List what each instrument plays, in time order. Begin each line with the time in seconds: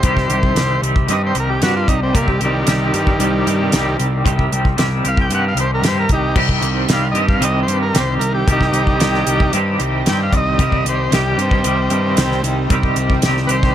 Already playing: transistor combo organ C5
0.03 picked electric bass C2, clean electric guitar C3 D#3 G3 C4 G4, kick, closed hi-hat
0.17 kick, snare
0.30 picked electric bass C2, clean electric guitar G3 C4 G4, closed hi-hat
0.43 kick
0.55 picked electric bass C2, clean electric guitar D#3 G3 C4 G4, snare, closed hi-hat
0.82 picked electric bass C2, clean electric guitar G3 C4 G4, closed hi-hat
0.96 kick
1.08 picked electric bass G2, clean electric guitar C3 D#3 G3 C4 G4, transistor combo organ D#5, closed hi-hat
1.26 transistor combo organ C5
1.35 picked electric bass C2, clean electric guitar G3 C4 G4, closed hi-hat
1.40 transistor combo organ A#4
1.50 transistor combo organ G4
1.60 picked electric bass G2, clean electric guitar D#3 G3 C4 G4, transistor combo organ F#4, snare, closed hi-hat
1.76 transistor combo organ F4
1.88 picked electric bass C2, transistor combo organ D#4, kick, closed hi-hat
2.03 transistor combo organ C4
2.13 picked electric bass C2, clean electric guitar C3 D#3 G3 C4 G4, transistor combo organ A#3, kick, closed hi-hat
2.28 transistor combo organ G3, kick
2.40 picked electric bass C2, clean electric guitar G3 C4 G4, closed hi-hat
2.45 transistor combo organ D#3 G3
2.67 picked electric bass C2, clean electric guitar D#3 G3 C4 G4, snare, closed hi-hat
2.93 picked electric bass G2, clean electric guitar G3 C4 G4, closed hi-hat
3.07 kick
3.19 picked electric bass C2, clean electric guitar C3 D#3 G3 C4 G4, closed hi-hat
3.45 picked electric bass G2, clean electric guitar G3 C4 G4, closed hi-hat
3.72 picked electric bass C2, clean electric guitar D#3 G3 C4 G4, snare, closed hi-hat
4.00 picked electric bass C2, closed hi-hat
4.24 picked electric bass C2, clean electric guitar C3 D#3 G3 C4 G4, kick, closed hi-hat
4.39 kick
4.51 picked electric bass C2, clean electric guitar G3 C4 G4, closed hi-hat
4.65 kick
4.77 picked electric bass C2, clean electric guitar D#3 G3 C4 G4, snare, closed hi-hat
5.04 picked electric bass C2, clean electric guitar G3 C4 G4, transistor combo organ F5, closed hi-hat
5.17 transistor combo organ G5, kick
5.30 picked electric bass G2, clean electric guitar C3 D#3 G3 C4 G4, closed hi-hat
5.34 transistor combo organ F#5
5.48 transistor combo organ F5
5.55 picked electric bass C2, clean electric guitar C4 G4, closed hi-hat
5.59 clean electric guitar G3, transistor combo organ C5
5.74 transistor combo organ A#4
5.82 picked electric bass G2, clean electric guitar D#3 G3 C4 G4, snare, closed hi-hat
5.88 transistor combo organ C5
6.00 transistor combo organ A#4
6.09 picked electric bass C2, transistor combo organ D#4, kick, closed hi-hat
6.14 transistor combo organ G4
6.33 picked electric bass C2, clean electric guitar C3 D#3 G3, string machine C4 D#4 G4 D#5, kick, crash
6.37 clean electric guitar C4 G4
6.49 kick
6.62 picked electric bass C2, clean electric guitar G3 C4 G4, closed hi-hat
6.89 picked electric bass C2, clean electric guitar D#3 G3 C4 G4, transistor combo organ F5, snare, closed hi-hat
7.11 picked electric bass G2, clean electric guitar C4 G4, transistor combo organ D#5, closed hi-hat
7.16 clean electric guitar G3
7.29 transistor combo organ F5, kick
7.40 picked electric bass C2, clean electric guitar C3 D#3 G3 C4 G4, closed hi-hat
7.44 transistor combo organ D#5
7.63 clean electric guitar G4, transistor combo organ C5
7.68 picked electric bass G2, clean electric guitar G3 C4, closed hi-hat
7.82 transistor combo organ A#4
7.93 picked electric bass C2, clean electric guitar D#3 G3 C4 G4, snare, closed hi-hat
8.00 transistor combo organ C5
8.19 picked electric bass C2, transistor combo organ A#4, closed hi-hat
8.34 transistor combo organ G4
8.46 picked electric bass C2, clean electric guitar C3 D#3 G3 C4 G4, kick, closed hi-hat
8.52 transistor combo organ D#4 G4
8.61 kick, snare
8.72 picked electric bass C2, clean electric guitar G3 C4 G4, closed hi-hat
8.87 kick
8.99 picked electric bass C2, clean electric guitar D#3 G3 C4 G4, snare, closed hi-hat
9.15 snare
9.26 picked electric bass C2, clean electric guitar G3 C4 G4, closed hi-hat
9.40 kick
9.53 picked electric bass G2, clean electric guitar C3 D#3 G3 C4 G4, closed hi-hat
9.79 picked electric bass C2, clean electric guitar G3 C4 G4, closed hi-hat
10.05 picked electric bass G2, clean electric guitar D#3 G3 C4 G4, snare, closed hi-hat
10.09 transistor combo organ G5
10.23 transistor combo organ F5
10.32 picked electric bass C2, transistor combo organ D5, kick, closed hi-hat
10.37 transistor combo organ D#5
10.58 picked electric bass C2, clean electric guitar C3 D#3 G3 C4 G4, kick, closed hi-hat
10.72 kick
10.85 picked electric bass C2, clean electric guitar G3 C4 G4, transistor combo organ C5, closed hi-hat
11.12 picked electric bass C2, clean electric guitar D#3 G3 C4 G4, transistor combo organ G4, snare, closed hi-hat
11.37 picked electric bass G2, clean electric guitar G3 C4 G4, transistor combo organ C4, closed hi-hat
11.51 kick
11.64 picked electric bass C2, clean electric guitar C3 D#3 G3 C4 G4, closed hi-hat
11.90 picked electric bass G2, clean electric guitar G3 C4 G4, closed hi-hat
12.17 picked electric bass C2, clean electric guitar D#3 G3 C4 G4, snare, closed hi-hat
12.32 snare
12.43 picked electric bass C2, closed hi-hat
12.70 picked electric bass C2, clean electric guitar C3 D#3 G3 C4 G4, kick, closed hi-hat
12.83 kick
12.96 picked electric bass C2, clean electric guitar G3 C4 G4, closed hi-hat
13.10 kick
13.22 picked electric bass C2, clean electric guitar D#3 G3 C4 G4, snare, closed hi-hat
13.37 snare
13.47 picked electric bass C2, clean electric guitar G3 C4 G4, transistor combo organ B4, closed hi-hat
13.52 transistor combo organ C5
13.63 kick, snare